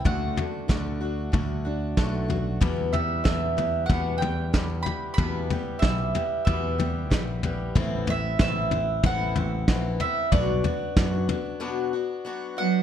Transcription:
<<
  \new Staff \with { instrumentName = "Mandolin" } { \time 4/4 \key e \minor \tempo 4 = 93 fis''2. r4 | r8 e''8 e''4 fis''8 g''4 b''8 | b''4 e''4 e''4. r8 | r8 e''8 e''4 fis''4. e''8 |
d''2. r8 fis''8 | }
  \new Staff \with { instrumentName = "Steel-string acoustic guitar" } { \time 4/4 \key e \minor <d a d' fis'>8 <a d' fis'>8 <d a d' fis'>8 <a d' fis'>8 <d a d' fis'>8 <a d' fis'>8 <d a d' fis'>8 <a d' fis'>8 | <e, b, e g b g'>8 <e g b g'>8 <e g b g'>8 <e g b g'>8 <e, b, e g b g'>8 <e g b g'>8 <e g b g'>8 <e g b g'>8 | <e, b, e g b g'>8 <e g b g'>8 <e g b g'>8 <e g b g'>8 <e, b, e g b g'>8 <e g b g'>8 <e g b g'>8 <e g b g'>8 | <a, e b c' e'>8 <b c' e'>8 <e b c' e'>8 <b c' e'>8 <a, e b c' e'>8 <b c' e'>8 <e b c' e'>8 <b c' e'>8 |
<b, fis b d' fis'>8 <b d' fis'>8 <fis b d' fis'>8 <b d' fis'>8 <b, fis b d' fis'>8 <b d' fis'>8 <fis b d' fis'>8 <b d' fis'>8 | }
  \new Staff \with { instrumentName = "Steel-string acoustic guitar" } { \time 4/4 \key e \minor << { <d a d' fis'>4. fis'4 d'8 a8 fis'8 | r1 | r1 | r1 |
r1 | } \\ { d,4 d4 a,4 d4 | r1 | r1 | r1 |
r1 | } >> }
  \new Staff \with { instrumentName = "Cello" } { \clef bass \time 4/4 \key e \minor r1 | r1 | r1 | r1 |
r2. r8 fis8 | }
  \new Staff \with { instrumentName = "Picked electric bass" } { \clef bass \time 4/4 \key e \minor d,8 r8 d,4 d,4 b,,4 | e,4 e,4 e,8 e,8 e,8 r8 | e,8 r8 b,,8 r8 e,4 ais,,4 | a,,4 a,,4 a,,8 a,,8 ais,,8 r8 |
b,,8 r8 fis,8 r2 r8 | }
  \new DrumStaff \with { instrumentName = "Drums" } \drummode { \time 4/4 <bd tomfh>8 tomfh8 <bd sn>4 <bd tomfh>4 <bd sn>8 tomfh8 | <bd tomfh>8 tomfh8 <bd sn>8 tomfh8 <bd tomfh>8 tomfh8 <bd sn>8 tomfh8 | <bd tomfh>8 tomfh8 <bd sn>8 tomfh8 <bd tomfh>8 tomfh8 <bd sn>8 tomfh8 | <bd tomfh>8 tomfh8 <bd sn>8 tomfh8 <bd tomfh>8 tomfh8 <bd sn>8 tomfh8 |
<bd tomfh>8 tomfh8 <bd sn>8 tomfh8 r4 r4 | }
>>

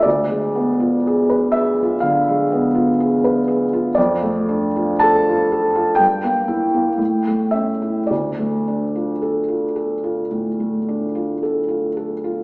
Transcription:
\new Staff \with { instrumentName = "Felt piano" } { \time 4/4 \key a \phrygian \tempo 4 = 59 << { d''4. e''8 f''4. r8 | d''4 a''4 g''4. e''8 | d''2. r4 | } \\ { d,16 aes16 b16 f'16 aes'16 b'16 aes'16 f'16 d16 aes16 b16 f'16 aes'16 b'16 aes'16 f'16 | f,16 a16 d'16 f'16 a'16 f'16 a'16 f'16 g,16 bes16 e'16 bes16 a,16 a16 cis'16 e'16 | d,16 a16 d'16 f'16 a'16 f'16 a'16 f'16 a,16 a16 d'16 f'16 a'16 f'16 a'16 f'16 | } >> }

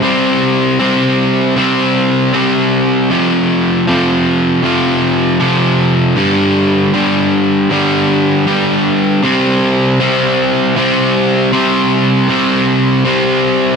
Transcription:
\new Staff \with { instrumentName = "Overdriven electric guitar" } { \clef bass \time 3/4 \key c \phrygian \tempo 4 = 117 <c g c'>4. <c g c'>4. | <c g c'>4. <c g c'>4. | <f, c f>4. <f, c f>4. | <f, c f>4. <f, c f>4. |
<g, d g>4. <g, d g>4. | <g, d g>4. <g, d g>4. | <c g c'>4. <c g c'>4. | <c g c'>4. <c g c'>4. |
<c g c'>4. <c g c'>4. | }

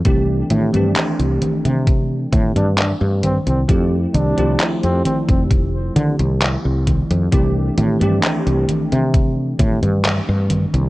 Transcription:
<<
  \new Staff \with { instrumentName = "Flugelhorn" } { \time 4/4 \key c \major \tempo 4 = 66 r2 r8. d'16 d'16 r16 c'16 c'16 | r8 d'8 r16 c'16 c'16 c'16 r2 | r1 | }
  \new Staff \with { instrumentName = "Tine electric piano" } { \time 4/4 \key c \major <e a c' d' g'>8. <e a c' d' g'>2.~ <e a c' d' g'>16 | <f a c' e' g'>8. <f a c' e' g'>2.~ <f a c' e' g'>16 | <e a c' d' g'>8. <e a c' d' g'>2.~ <e a c' d' g'>16 | }
  \new Staff \with { instrumentName = "Fretless electric bass" } { \clef bass \time 4/4 \key c \major c,8 a,16 g,16 r16 c,16 r16 c8. a,16 g,8 g,8 c,16 | f,8 c,16 c,16 r16 f,16 r16 f,,8. d16 c,8 c,8 f,16 | c,8 a,16 g,16 r16 c,16 r16 c8. a,16 g,8 g,8 c,16 | }
  \new DrumStaff \with { instrumentName = "Drums" } \drummode { \time 4/4 <cgho hh bd>8 <cgho hh>16 <cgho hh>16 <hc cgho hh>16 hh16 <cgho hh>16 <cgho hh>16 <cgho hh bd>8 <cgho hh bd>16 <cgho hh>16 <hc cgho hh>8 <cgho hh>16 <cgho hh>16 | <cgho hh bd>8 <cgho hh>16 <cgho hh>16 <hc cgho hh>16 hh16 <cgho hh>16 <cgho hh bd>16 <cgho hh bd>8 <cgho hh>16 <cgho hh>16 <hc cgho hh>8 <cgho hh bd>16 <cgho hh>16 | <cgho hh bd>8 <cgho hh>16 <cgho hh>16 <hc cgho hh>16 hh16 <cgho hh>16 <cgho hh>16 <cgho hh bd>8 <cgho hh bd>16 <cgho hh>16 <hc cgho hh>8 <cgho hh>16 <cgho hh>16 | }
>>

